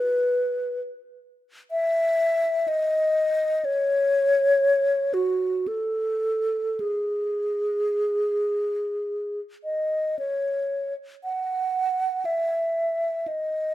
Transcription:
Already playing: B4
1.71 E5
2.68 D#5
3.65 C#5
5.14 F#4
5.68 A4
6.80 G#4
9.64 D#5
10.19 C#5
11.24 F#5
12.25 E5
13.28 D#5

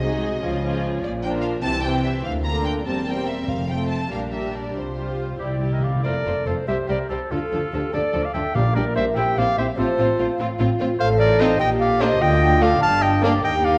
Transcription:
Already playing: C2 C3 G#3 F#4 D#5
0.00 G#3 D#4 F#4 G#4
0.42 C#2 C#3 F3 C#4 F4 G#4
0.63 F3 C#4 F4 G#4
1.03 A#1 A#2 F3 D5
1.23 F3 D4 F4 A#4 G5
1.42 F5
1.63 C2 C3 E3 G3 C4 E4 G4 A5
1.83 E3 C4 G4 G5
2.04 E5
2.24 D2 A#3 D4 F5
2.45 D3 D4 F4 A#4 A#5
2.65 G5
2.84 E1 E2 G3 C4 A#4 A5
3.06 G3 C4 A#4 G5
3.27 E5
3.48 F1 F2 A3 F5
3.68 A3 C4 F4 A4 G5
3.89 A5
4.09 A#1 A#2 G3 D4 G4 A#4 F5
4.30 G3 D4 G4 A#4 E5
4.54 D5
4.74 C2 C3 F4 C5
4.95 G3 F4 G4
5.38 C2 C3 G3 E4 G4 D5
5.48 C3
5.55 C3
5.60 C3 G3 E4 G4
5.71 C3 A#4 D#5
5.79 C3 F5
5.83 C3 D5
5.94 C3
6.03 F1 F2 A3 F4 A4 A#4 C5 D5
6.25 F1 F2 A3 F4 C5
6.46 F1 F2 A3 F4 A4 C5
6.67 C2 C3 G3 G4 C5 E5
6.88 C2 C3 G3 G4 A#4 C5 D5
7.09 C2 C3 G3 G4 A4 C5
7.31 D2 D3 F3 D4 F4 A4
7.51 D2 D3 F3 D4 F4 A4
7.72 D2 D3 F3 D4 G4 A4
7.93 D2 D3 F3 D4 A4 D5
8.13 D2 D3 F3 D4 A4
8.23 D5 F5
8.33 D2 D3 F3 D4 A4 E5 G5
8.53 A#1 A#2 G3 D4 G4 A#4 D5 F5
8.74 A#1 A#2 G3 D4 G4 A#4 D5
8.95 A#1 A#2 G3 D4 G4 C5 E5
9.15 A#1 A#2 C4 E4 G4 E5 G5
9.36 A#1 A#2 C4 E4 G4 D5 F5
9.57 A#1 A#2 C4 E4 G4 C5 E5
9.76 A1 A2 C4 F4 A4 C5
9.81 F4
9.98 A1 A2 C4 F4
10.19 A1 A2 C4 F4
10.39 A1 A2 C4 F4
10.59 A1 A2 C4 F4
10.80 A1 A2 C4 F4
10.99 A1 A2 A4 C5 F5
11.19 A#4 D5
11.39 C4 D#4 F4 C5 D#5
11.59 A#1 A#2 G4 D#5 G5
11.79 D5 F5
12.00 A#3 D4 F4 C5 D#5
12.20 D2 D3 F4 D#5 G5
12.61 A3 D4 F4 D5 F5
12.80 G1 G2 D4 F5 A5
13.01 D#5 G5
13.21 A#3 D4 G4 D5 F5
13.43 D#2 A#3 D#4 G4 D#5 G5
13.64 D5 F5

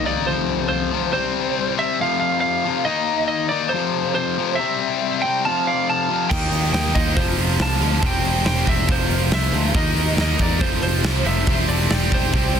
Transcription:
0.05 D#3 A#3 D#4 D5
0.27 F2 C3 F3 C5
0.69 C5
0.92 F2 C3 F3
1.13 C3 G3 C4 C5
1.78 C3 G3 C4 E5
2.01 F2 C3 F3 F5
2.20 F5
2.40 F5
2.65 F2 C3 F3
2.85 D#3 A#3 D#4 D#5
3.28 D#5
3.49 D#3 A#3 D#4 D5
3.69 F2 C5
3.74 C3 F3
4.15 C5
4.38 F2 C3 F3
4.55 E5
4.60 C3 G3 C4
5.22 G3 C4 G5
5.27 C3
5.45 F2 C3 F3 F5 A5
5.67 D5 F5
5.90 F5 A5
6.10 F2 C3 F3
6.29 D#2 D#3 A#3 D#4 D#5 G5, kick, crash
6.51 D#2, open hi-hat
6.73 D#2 D#5 G5, snare, open hi-hat
6.85 snare
6.93 D#2 D#3 A#3 D#4 C5 D#5, kick, open hi-hat
7.15 F1 F2 C3 F3 F4 C5, kick, open hi-hat
7.38 F1, open hi-hat
7.59 C2 F5 A5, snare, open hi-hat
7.79 D2 F2 C3 F3, open hi-hat
8.01 E1 C3 G3 C4 C5, kick, open hi-hat
8.06 G5
8.24 E1, open hi-hat
8.44 E1 C5 G5, snare, open hi-hat
8.57 snare
8.67 E1 C3 G3 C4 C5 E5, kick, open hi-hat
8.87 F1 F2 C3 F3 F4, kick, open hi-hat
8.92 C5
9.10 F1, open hi-hat
9.31 C2 C5 E5, snare, open hi-hat
9.53 D2 F2 C3 F3, open hi-hat
9.74 D#2 D#3 A#3 D#4 A#4 D#5, kick, open hi-hat
9.95 D#2, open hi-hat
10.17 D#2 A#4, snare, open hi-hat
10.21 D#5
10.38 E2 D#3 A#3 D#4 A#4 D5, kick, open hi-hat
10.59 F1 F2 C3 F3 F4 C5, kick, open hi-hat
10.82 F1 F4 C5, open hi-hat
11.03 C2, snare, open hi-hat
11.24 F1 F2 C3 F3 C5 E5, open hi-hat
11.47 E1 C3 G3 C4, kick, open hi-hat
11.68 E1 A4 D5, open hi-hat
11.90 E1 G4 D5, snare, open hi-hat
12.11 E1 C3 G3 C4 G4 C5, kick, open hi-hat
12.33 C2 C3 G3 C4, kick, open hi-hat
12.53 C2, open hi-hat

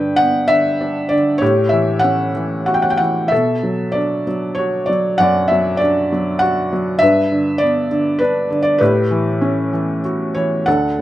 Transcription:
Already playing: G2 D3 B4 G5
0.16 B3 F#5
0.48 D3 E5
0.81 D4
1.09 D3 D5
1.38 A2 G4 C#5
1.69 E3 E5
1.99 F#5
2.04 C#4
2.35 E3
2.66 F#4 F#5
2.74 G5
2.82 F#5
2.90 G5
2.97 E3 F#5
3.28 B2 A4 E5
3.63 F#3
3.92 D4 D5
4.27 F#3
4.55 F#4 C#5
4.86 F#3 D5
5.18 F#2 D5 F#5
5.48 F#3 E5
5.77 D5
5.82 D4
6.12 F#3
6.39 F#4 F#5
6.72 F#3
6.99 G2 B4 E5
7.32 D3
7.58 B3 D5
7.92 D3
8.19 D4 B4
8.50 D3
8.62 D5
8.78 A2 G4 B4
9.11 E3
9.41 C#4
9.73 E3
10.05 F#4
10.35 E3 C#5
10.66 D2 A4 F#5

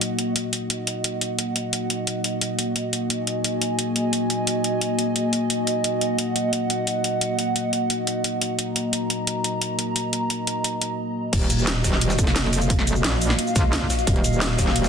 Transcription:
Already playing: A#3 F#4 D#5 F#5
0.01 closed hi-hat
0.19 closed hi-hat
0.36 F#5, closed hi-hat
0.53 closed hi-hat
0.70 closed hi-hat
0.87 closed hi-hat
1.04 closed hi-hat
1.21 closed hi-hat
1.39 closed hi-hat
1.56 closed hi-hat
1.73 closed hi-hat
1.90 closed hi-hat
2.07 closed hi-hat
2.24 closed hi-hat
2.41 closed hi-hat
2.59 closed hi-hat
2.76 closed hi-hat
2.93 closed hi-hat
3.10 G#5, closed hi-hat
3.27 closed hi-hat
3.44 closed hi-hat
3.62 closed hi-hat
3.79 closed hi-hat
3.96 closed hi-hat
4.13 closed hi-hat
4.30 closed hi-hat
4.47 closed hi-hat
4.64 closed hi-hat
4.81 closed hi-hat
4.99 closed hi-hat
5.16 closed hi-hat
5.33 closed hi-hat
5.50 closed hi-hat
5.67 closed hi-hat
5.84 F#5, closed hi-hat
6.01 closed hi-hat
6.19 closed hi-hat
6.36 closed hi-hat
6.53 closed hi-hat
6.70 closed hi-hat
6.87 closed hi-hat
7.04 closed hi-hat
7.21 closed hi-hat
7.39 closed hi-hat
7.56 closed hi-hat
7.73 closed hi-hat
7.90 closed hi-hat
8.07 closed hi-hat
8.24 closed hi-hat
8.41 closed hi-hat
8.59 A#5, closed hi-hat
8.76 closed hi-hat
8.93 closed hi-hat
9.10 closed hi-hat
9.27 closed hi-hat
9.44 closed hi-hat
9.62 closed hi-hat
9.79 closed hi-hat
9.96 closed hi-hat
10.13 closed hi-hat
10.30 closed hi-hat
10.47 closed hi-hat
10.64 closed hi-hat
10.82 closed hi-hat
11.33 D#1 A#3 F#4 D#5 F5, kick, closed hi-hat, crash, ride
11.41 ride
11.50 closed hi-hat, ride, shaker
11.59 shaker
11.67 snare, closed hi-hat, ride
11.84 D#1, kick, snare, open hi-hat, ride, shaker
11.93 snare
12.01 D#1, closed hi-hat, ride
12.10 snare, shaker
12.19 F1, kick, closed hi-hat, ride, shaker
12.27 snare
12.36 snare, closed hi-hat, ride
12.44 snare
12.53 snare, open hi-hat, ride, shaker
12.61 ride, shaker
12.70 kick, closed hi-hat, ride
12.79 snare
12.87 closed hi-hat, ride, shaker
12.96 shaker
13.04 A#1, snare, closed hi-hat, ride
13.21 open hi-hat, ride, shaker
13.30 snare
13.39 closed hi-hat, ride
13.47 shaker
13.56 C#2, kick, snare, closed hi-hat, ride, shaker
13.73 snare, closed hi-hat, ride
13.81 kick
13.90 snare, open hi-hat, ride, shaker
13.99 ride, shaker
14.07 D#1, kick, closed hi-hat, ride
14.16 ride
14.24 closed hi-hat, ride, shaker
14.33 shaker
14.41 snare, closed hi-hat, ride
14.59 D#1, kick, snare, open hi-hat, ride, shaker
14.67 snare
14.76 D#1, closed hi-hat, ride
14.84 snare, shaker

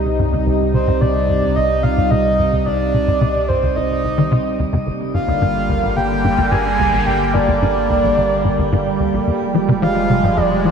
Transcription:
Already playing: C2 C3 G3 D#4
0.19 G2
0.32 D#2
0.46 C2
0.74 C3 C5
0.87 G2
1.01 C3 D5
1.29 G2
1.42 D#2
1.56 C2 D#5
1.83 C3 F5
1.97 G2
2.11 C3 D#5
2.39 G2
2.53 D#2
2.66 C2 D5
2.94 C3
3.08 G2
3.21 C3
3.48 G2 C5
3.63 D#2
3.76 C2 D#5
4.04 C2
4.18 D#3
4.32 C3
4.59 D#2
4.73 F2
4.86 G1 D3 G3 A#3
5.14 G2 F5
5.28 D2
5.42 G2
5.69 D2
5.83 A#1
5.96 G1 G5
6.24 G2
6.38 D2
6.51 G2 G#5
6.79 D2
6.93 A#1
7.06 G1 G5
7.34 G2 D5
7.48 D2
7.62 G2
7.90 D2
8.03 A#1
8.17 G1
8.45 G2
8.58 D2
8.72 G2
9.00 D2
9.13 A#1
9.27 F1 F2 F3 G#3
9.54 F3
9.68 C3
9.82 F3 F5
10.10 C3
10.23 G#2
10.37 F2 D5
10.65 F3

